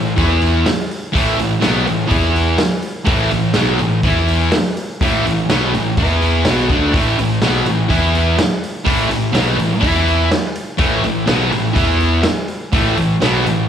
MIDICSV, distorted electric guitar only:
0, 0, Header, 1, 3, 480
1, 0, Start_track
1, 0, Tempo, 483092
1, 1136, Time_signature, 4, 2, 24, 8
1, 13598, End_track
2, 0, Start_track
2, 0, Title_t, "Distorted electric guitar"
2, 0, Program_c, 0, 30
2, 0, Note_on_c, 0, 45, 60
2, 0, Note_on_c, 0, 52, 72
2, 125, Note_off_c, 0, 45, 0
2, 125, Note_off_c, 0, 52, 0
2, 162, Note_on_c, 0, 52, 79
2, 180, Note_on_c, 0, 59, 94
2, 189, Note_on_c, 0, 64, 87
2, 642, Note_off_c, 0, 52, 0
2, 651, Note_off_c, 0, 59, 0
2, 655, Note_off_c, 0, 64, 0
2, 1119, Note_on_c, 0, 45, 81
2, 1126, Note_on_c, 0, 52, 85
2, 1144, Note_on_c, 0, 57, 107
2, 1361, Note_off_c, 0, 45, 0
2, 1364, Note_off_c, 0, 52, 0
2, 1371, Note_on_c, 0, 45, 64
2, 1373, Note_off_c, 0, 57, 0
2, 1381, Note_on_c, 0, 52, 75
2, 1566, Note_off_c, 0, 45, 0
2, 1571, Note_off_c, 0, 52, 0
2, 1597, Note_on_c, 0, 47, 85
2, 1604, Note_on_c, 0, 54, 92
2, 1613, Note_on_c, 0, 59, 92
2, 1840, Note_off_c, 0, 47, 0
2, 1844, Note_off_c, 0, 54, 0
2, 1848, Note_off_c, 0, 59, 0
2, 1852, Note_on_c, 0, 45, 55
2, 1856, Note_on_c, 0, 52, 74
2, 2047, Note_off_c, 0, 45, 0
2, 2049, Note_off_c, 0, 52, 0
2, 2064, Note_on_c, 0, 52, 85
2, 2077, Note_on_c, 0, 59, 87
2, 2088, Note_on_c, 0, 64, 93
2, 2554, Note_off_c, 0, 52, 0
2, 2561, Note_off_c, 0, 59, 0
2, 2566, Note_off_c, 0, 64, 0
2, 3029, Note_on_c, 0, 45, 90
2, 3051, Note_on_c, 0, 52, 96
2, 3055, Note_on_c, 0, 57, 83
2, 3277, Note_off_c, 0, 45, 0
2, 3279, Note_off_c, 0, 52, 0
2, 3290, Note_off_c, 0, 57, 0
2, 3291, Note_on_c, 0, 52, 66
2, 3296, Note_on_c, 0, 45, 55
2, 3487, Note_off_c, 0, 52, 0
2, 3489, Note_off_c, 0, 45, 0
2, 3515, Note_on_c, 0, 47, 83
2, 3528, Note_on_c, 0, 54, 90
2, 3534, Note_on_c, 0, 59, 80
2, 3760, Note_off_c, 0, 47, 0
2, 3764, Note_on_c, 0, 45, 55
2, 3766, Note_off_c, 0, 54, 0
2, 3769, Note_off_c, 0, 59, 0
2, 3775, Note_on_c, 0, 52, 62
2, 3963, Note_off_c, 0, 45, 0
2, 3969, Note_off_c, 0, 52, 0
2, 4013, Note_on_c, 0, 52, 91
2, 4035, Note_on_c, 0, 59, 74
2, 4041, Note_on_c, 0, 64, 91
2, 4488, Note_off_c, 0, 52, 0
2, 4499, Note_off_c, 0, 59, 0
2, 4502, Note_off_c, 0, 64, 0
2, 4977, Note_on_c, 0, 45, 83
2, 4985, Note_on_c, 0, 52, 91
2, 4996, Note_on_c, 0, 57, 101
2, 5198, Note_off_c, 0, 45, 0
2, 5210, Note_on_c, 0, 45, 63
2, 5212, Note_off_c, 0, 52, 0
2, 5220, Note_off_c, 0, 57, 0
2, 5224, Note_on_c, 0, 52, 63
2, 5405, Note_off_c, 0, 45, 0
2, 5413, Note_off_c, 0, 52, 0
2, 5460, Note_on_c, 0, 47, 94
2, 5463, Note_on_c, 0, 59, 96
2, 5466, Note_on_c, 0, 54, 81
2, 5691, Note_off_c, 0, 47, 0
2, 5693, Note_off_c, 0, 59, 0
2, 5694, Note_off_c, 0, 54, 0
2, 5709, Note_on_c, 0, 45, 58
2, 5715, Note_on_c, 0, 52, 62
2, 5895, Note_off_c, 0, 45, 0
2, 5898, Note_off_c, 0, 52, 0
2, 5942, Note_on_c, 0, 52, 89
2, 5947, Note_on_c, 0, 59, 78
2, 5953, Note_on_c, 0, 64, 84
2, 6411, Note_off_c, 0, 52, 0
2, 6414, Note_off_c, 0, 59, 0
2, 6417, Note_off_c, 0, 64, 0
2, 6425, Note_on_c, 0, 47, 83
2, 6435, Note_on_c, 0, 54, 81
2, 6446, Note_on_c, 0, 59, 86
2, 6653, Note_off_c, 0, 47, 0
2, 6658, Note_off_c, 0, 54, 0
2, 6663, Note_off_c, 0, 59, 0
2, 6665, Note_on_c, 0, 50, 82
2, 6683, Note_on_c, 0, 57, 92
2, 6686, Note_on_c, 0, 62, 93
2, 6877, Note_off_c, 0, 50, 0
2, 6881, Note_on_c, 0, 45, 91
2, 6894, Note_off_c, 0, 57, 0
2, 6898, Note_on_c, 0, 52, 100
2, 6902, Note_off_c, 0, 62, 0
2, 6906, Note_on_c, 0, 57, 97
2, 7121, Note_off_c, 0, 45, 0
2, 7129, Note_off_c, 0, 52, 0
2, 7133, Note_off_c, 0, 57, 0
2, 7136, Note_on_c, 0, 45, 63
2, 7139, Note_on_c, 0, 52, 69
2, 7327, Note_off_c, 0, 45, 0
2, 7329, Note_off_c, 0, 52, 0
2, 7374, Note_on_c, 0, 47, 89
2, 7378, Note_on_c, 0, 59, 82
2, 7380, Note_on_c, 0, 54, 94
2, 7607, Note_off_c, 0, 47, 0
2, 7609, Note_off_c, 0, 59, 0
2, 7610, Note_off_c, 0, 54, 0
2, 7614, Note_on_c, 0, 52, 70
2, 7620, Note_on_c, 0, 45, 60
2, 7806, Note_off_c, 0, 52, 0
2, 7809, Note_off_c, 0, 45, 0
2, 7833, Note_on_c, 0, 52, 82
2, 7838, Note_on_c, 0, 59, 82
2, 7850, Note_on_c, 0, 64, 86
2, 8316, Note_off_c, 0, 52, 0
2, 8318, Note_off_c, 0, 59, 0
2, 8324, Note_off_c, 0, 64, 0
2, 8791, Note_on_c, 0, 45, 98
2, 8792, Note_on_c, 0, 52, 85
2, 8810, Note_on_c, 0, 57, 96
2, 9020, Note_off_c, 0, 45, 0
2, 9029, Note_off_c, 0, 52, 0
2, 9032, Note_on_c, 0, 45, 63
2, 9041, Note_on_c, 0, 52, 61
2, 9044, Note_off_c, 0, 57, 0
2, 9234, Note_off_c, 0, 45, 0
2, 9239, Note_off_c, 0, 52, 0
2, 9267, Note_on_c, 0, 47, 89
2, 9267, Note_on_c, 0, 54, 83
2, 9285, Note_on_c, 0, 59, 87
2, 9503, Note_off_c, 0, 47, 0
2, 9506, Note_off_c, 0, 54, 0
2, 9507, Note_on_c, 0, 45, 63
2, 9510, Note_on_c, 0, 52, 70
2, 9521, Note_off_c, 0, 59, 0
2, 9740, Note_off_c, 0, 52, 0
2, 9740, Note_on_c, 0, 59, 87
2, 9741, Note_off_c, 0, 45, 0
2, 9741, Note_on_c, 0, 52, 75
2, 9751, Note_on_c, 0, 64, 92
2, 10228, Note_off_c, 0, 59, 0
2, 10229, Note_off_c, 0, 52, 0
2, 10234, Note_off_c, 0, 64, 0
2, 10708, Note_on_c, 0, 45, 94
2, 10712, Note_on_c, 0, 52, 98
2, 10725, Note_on_c, 0, 57, 85
2, 10952, Note_off_c, 0, 45, 0
2, 10954, Note_off_c, 0, 52, 0
2, 10960, Note_off_c, 0, 57, 0
2, 10974, Note_on_c, 0, 45, 68
2, 10982, Note_on_c, 0, 52, 70
2, 11164, Note_off_c, 0, 45, 0
2, 11168, Note_off_c, 0, 52, 0
2, 11189, Note_on_c, 0, 47, 83
2, 11195, Note_on_c, 0, 54, 80
2, 11208, Note_on_c, 0, 59, 90
2, 11432, Note_off_c, 0, 47, 0
2, 11435, Note_off_c, 0, 54, 0
2, 11437, Note_on_c, 0, 45, 64
2, 11439, Note_on_c, 0, 52, 75
2, 11442, Note_off_c, 0, 59, 0
2, 11635, Note_off_c, 0, 45, 0
2, 11637, Note_off_c, 0, 52, 0
2, 11659, Note_on_c, 0, 52, 81
2, 11667, Note_on_c, 0, 59, 84
2, 11680, Note_on_c, 0, 64, 88
2, 12147, Note_off_c, 0, 52, 0
2, 12151, Note_off_c, 0, 59, 0
2, 12157, Note_off_c, 0, 64, 0
2, 12646, Note_on_c, 0, 45, 89
2, 12648, Note_on_c, 0, 52, 93
2, 12665, Note_on_c, 0, 57, 97
2, 12870, Note_off_c, 0, 52, 0
2, 12871, Note_off_c, 0, 45, 0
2, 12882, Note_on_c, 0, 52, 62
2, 12883, Note_on_c, 0, 45, 56
2, 12890, Note_off_c, 0, 57, 0
2, 13078, Note_off_c, 0, 45, 0
2, 13078, Note_off_c, 0, 52, 0
2, 13124, Note_on_c, 0, 47, 80
2, 13137, Note_on_c, 0, 54, 89
2, 13150, Note_on_c, 0, 59, 94
2, 13357, Note_off_c, 0, 47, 0
2, 13361, Note_on_c, 0, 45, 59
2, 13366, Note_off_c, 0, 54, 0
2, 13371, Note_on_c, 0, 52, 66
2, 13372, Note_off_c, 0, 59, 0
2, 13557, Note_off_c, 0, 45, 0
2, 13562, Note_off_c, 0, 52, 0
2, 13598, End_track
3, 0, Start_track
3, 0, Title_t, "Muted distorted electric guitar strokes"
3, 666, Note_on_c, 9, 29, 54
3, 765, Note_off_c, 9, 29, 0
3, 2578, Note_on_c, 9, 29, 48
3, 2677, Note_off_c, 9, 29, 0
3, 4513, Note_on_c, 9, 29, 48
3, 4612, Note_off_c, 9, 29, 0
3, 8328, Note_on_c, 9, 29, 45
3, 8427, Note_off_c, 9, 29, 0
3, 10240, Note_on_c, 9, 29, 56
3, 10339, Note_off_c, 9, 29, 0
3, 12151, Note_on_c, 9, 29, 49
3, 12250, Note_off_c, 9, 29, 0
3, 13598, End_track
0, 0, End_of_file